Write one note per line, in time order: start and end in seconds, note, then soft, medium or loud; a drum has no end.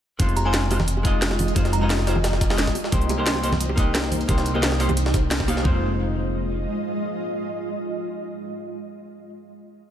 0.19 1.55 F1 loud
0.19 0.43 G#3 medium
0.19 2.73 G#3 medium
0.19 0.43 D#4 medium
0.19 2.73 F4 medium
0.19 0.44 F4 medium
0.19 0.44 C5 medium
0.19 2.73 D#5 medium
0.19 kick loud
0.19 closed hi-hat loud
0.19 closed hi-hat medium
0.29 closed hi-hat soft
0.37 0.44 A#5 medium
0.37 closed hi-hat medium
0.37 high bongo medium
0.45 0.68 G#3 medium
0.45 0.69 D#4 medium
0.45 0.69 F4 medium
0.45 0.69 C5 medium
0.45 0.66 G#5 medium
0.54 snare loud
0.54 closed hi-hat medium
0.54 closed hi-hat loud
0.70 0.77 G#3 medium
0.70 0.77 D#4 medium
0.70 0.77 F4 medium
0.70 0.78 C5 medium
0.70 closed hi-hat medium
0.70 open hi-hat medium
0.70 high bongo medium
0.80 snare soft
0.80 high conga medium
0.88 closed hi-hat medium
0.88 closed hi-hat loud
0.97 high bongo soft
1.03 1.53 G#3 loud
1.03 1.54 D#4 medium
1.03 1.54 F4 medium
1.03 1.55 D#5 loud
1.03 kick loud
1.03 closed hi-hat medium
1.22 snare loud
1.22 closed hi-hat medium
1.22 closed hi-hat loud
1.31 snare medium
1.31 high bongo medium
1.39 closed hi-hat medium
1.39 open hi-hat medium
1.39 high conga medium
1.48 closed hi-hat soft
1.55 2.74 F1 loud
1.55 1.79 G#3 medium
1.55 1.80 D#4 medium
1.55 1.80 F4 medium
1.55 1.80 C5 medium
1.55 kick loud
1.55 closed hi-hat loud
1.55 closed hi-hat medium
1.55 high bongo soft
1.65 snare soft
1.65 closed hi-hat soft
1.73 1.79 A#5 medium
1.73 closed hi-hat medium
1.81 2.05 G#3 medium
1.81 2.05 D#4 medium
1.81 2.05 F4 medium
1.81 2.06 D#5 loud
1.81 1.87 A#5 medium
1.90 snare loud
1.90 closed hi-hat loud
1.90 open hi-hat medium
1.90 high bongo medium
1.99 snare medium
2.06 2.17 G#3 medium
2.06 2.17 D#4 medium
2.06 2.17 F4 medium
2.06 2.18 C5 medium
2.06 snare medium
2.06 closed hi-hat medium
2.06 open hi-hat medium
2.15 high bongo medium
2.15 high conga medium
2.24 snare loud
2.24 closed hi-hat loud
2.24 open hi-hat medium
2.33 snare soft
2.41 kick loud
2.41 snare medium
2.41 closed hi-hat medium
2.49 2.74 G#3 medium
2.49 2.74 D#4 medium
2.49 2.75 F4 medium
2.49 2.75 D#5 medium
2.49 snare loud
2.49 open hi-hat medium
2.49 high bongo medium
2.58 snare soft
2.58 snare loud
2.58 closed hi-hat medium
2.67 kick medium
2.67 snare soft
2.67 closed hi-hat medium
2.75 5.62 A#3 medium
2.75 5.62 D#4 medium
2.75 5.62 C5 medium
2.75 closed hi-hat medium
2.75 open hi-hat medium
2.75 high bongo medium
2.84 snare soft
2.92 4.27 C2 loud
2.92 3.16 A#3 medium
2.92 3.16 D#4 medium
2.92 3.17 G4 medium
2.92 3.17 C5 medium
2.92 kick loud
2.92 closed hi-hat medium
2.92 closed hi-hat loud
3.01 closed hi-hat soft
3.09 closed hi-hat medium
3.09 high bongo medium
3.18 3.41 A#3 medium
3.18 3.41 D#4 medium
3.18 3.42 G4 medium
3.18 3.42 C5 medium
3.26 snare loud
3.26 closed hi-hat medium
3.26 closed hi-hat loud
3.35 high bongo medium
3.43 3.50 A#3 medium
3.43 3.50 D#4 medium
3.43 3.50 G4 medium
3.43 3.50 C5 medium
3.43 closed hi-hat medium
3.43 open hi-hat medium
3.52 snare soft
3.52 high conga medium
3.61 closed hi-hat medium
3.61 closed hi-hat loud
3.69 high bongo medium
3.76 4.26 A#3 loud
3.76 4.27 D#4 medium
3.76 4.27 G4 medium
3.76 4.28 D#5 loud
3.76 kick loud
3.76 closed hi-hat medium
3.95 snare loud
3.95 closed hi-hat medium
3.95 high bongo medium
4.04 snare medium
4.11 closed hi-hat medium
4.11 open hi-hat medium
4.11 high conga medium
4.21 closed hi-hat soft
4.28 5.64 C2 loud
4.28 4.52 A#3 medium
4.28 4.53 D#4 medium
4.28 4.53 G4 medium
4.28 4.53 C5 medium
4.28 kick loud
4.28 closed hi-hat medium
4.28 high bongo medium
4.38 snare soft
4.38 closed hi-hat soft
4.46 closed hi-hat medium
4.54 4.78 A#3 medium
4.54 4.78 D#4 medium
4.54 4.78 G4 medium
4.54 4.78 D#5 loud
4.54 high bongo medium
4.63 snare loud
4.63 closed hi-hat medium
4.63 open hi-hat medium
4.72 snare soft
4.79 4.90 A#3 medium
4.79 4.90 D#4 medium
4.79 4.90 G4 medium
4.79 4.91 C5 medium
4.79 snare medium
4.79 closed hi-hat medium
4.79 open hi-hat medium
4.89 closed hi-hat soft
4.89 high bongo medium
4.89 high conga medium
4.97 closed hi-hat medium
5.06 snare medium
5.14 kick loud
5.14 snare soft
5.14 closed hi-hat medium
5.14 high bongo medium
5.31 snare loud
5.31 closed hi-hat medium
5.40 kick medium
5.40 snare medium
5.47 5.62 A#3 loud
5.47 5.63 D#4 medium
5.47 5.63 G4 medium
5.47 5.64 F5 loud
5.47 closed hi-hat medium
5.47 open hi-hat medium
5.47 high bongo medium
5.57 snare soft
5.62 6.63 F1 loud
5.62 9.26 G#3 medium
5.62 9.14 G#3 medium
5.62 9.28 D#4 medium
5.62 9.14 F4 medium
5.62 9.29 F4 medium
5.62 9.14 D#5 medium
5.62 kick loud
5.68 9.31 C5 medium